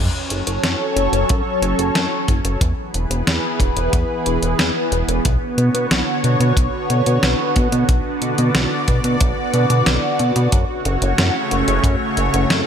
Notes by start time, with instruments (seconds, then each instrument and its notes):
Already playing: analog synth pad F#3 C#4 A4 C#5
0.30 analog synth bass F#1, closed hi-hat
0.47 analog synth bass F#1, closed hi-hat
0.63 analog synth bass F#2, snare, closed hi-hat
0.96 analog synth bass F#1, closed hi-hat
1.13 analog synth bass F#1, closed hi-hat
1.29 analog synth bass F#2, kick, closed hi-hat
1.62 analog synth bass F#1, closed hi-hat
1.79 analog synth bass F#1, closed hi-hat
1.95 analog synth bass F#2, snare, closed hi-hat
2.28 analog synth bass F#1, kick, closed hi-hat
2.44 analog synth bass F#1, closed hi-hat
2.61 analog synth bass E2, analog synth pad E3 B3 G#4 B4, kick, closed hi-hat
2.94 analog synth bass E1, closed hi-hat
3.10 analog synth bass E1, closed hi-hat
3.27 analog synth bass E2, snare, closed hi-hat
3.60 analog synth bass E1, kick, closed hi-hat
3.77 analog synth bass E1, closed hi-hat
3.93 analog synth bass E2, kick, closed hi-hat
4.26 analog synth bass E1, closed hi-hat
4.43 analog synth bass E1, closed hi-hat
4.59 analog synth bass E2, snare, closed hi-hat
4.92 analog synth bass E1, closed hi-hat
5.08 analog synth bass E1, closed hi-hat
5.25 analog synth bass B1, analog synth pad D3 F#4 C#5, kick, closed hi-hat
5.58 analog synth bass B2, closed hi-hat
5.74 analog synth bass B2, closed hi-hat
5.91 analog synth bass B1, snare, closed hi-hat
6.24 analog synth bass B2, closed hi-hat
6.40 analog synth bass B2, closed hi-hat
6.57 analog synth bass B1, kick, closed hi-hat
6.90 analog synth bass B2, closed hi-hat
7.06 analog synth bass B2, closed hi-hat
7.23 analog synth bass B1, snare, closed hi-hat
7.56 analog synth bass B2, kick, closed hi-hat
7.72 analog synth bass B2, closed hi-hat
7.89 analog synth bass B1, analog synth pad D5, kick, closed hi-hat
8.22 analog synth bass B2, closed hi-hat
8.38 analog synth bass B2, closed hi-hat
8.55 analog synth bass B1, snare, closed hi-hat
8.88 analog synth bass B2, kick, closed hi-hat
9.04 analog synth bass B2, closed hi-hat
9.21 analog synth bass B1, kick, closed hi-hat
9.54 analog synth bass B2, closed hi-hat
9.70 analog synth bass B2, closed hi-hat
9.86 analog synth bass B1, snare, closed hi-hat
10.19 analog synth bass B2, closed hi-hat
10.36 analog synth bass B2, closed hi-hat
10.52 analog synth bass F#2, analog synth pad C#3 A3 C#5, kick, closed hi-hat
10.85 analog synth bass F#1, closed hi-hat
11.02 analog synth bass F#1, closed hi-hat
11.18 analog synth bass F#2, snare, closed hi-hat
11.51 analog synth bass F#1, closed hi-hat
11.68 analog synth bass F#1, closed hi-hat
11.84 analog synth bass F#2, kick, closed hi-hat
12.17 analog synth bass F#1, closed hi-hat
12.34 analog synth bass F#1, closed hi-hat
12.50 analog synth bass F#2, snare, closed hi-hat